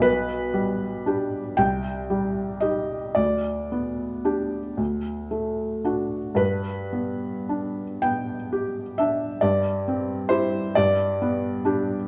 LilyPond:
\new Staff \with { instrumentName = "Felt piano" } { \time 12/8 \key g \major \tempo 4. = 39 << { b'4. g''4 ees''8 d''4. r4. | b'4. g''4 e''8 d''4 c''8 d''4. | } \\ { b,,8 g8 <d' g'>8 c,8 g8 <ees' g'>8 d,8 b8 <d' g'>8 d,8 a8 <d' fis'>8 | g,8 b8 d'8 b8 g'8 d'8 g,8 c'8 <e' g'>8 g,8 b8 <d' g'>8 | } >> }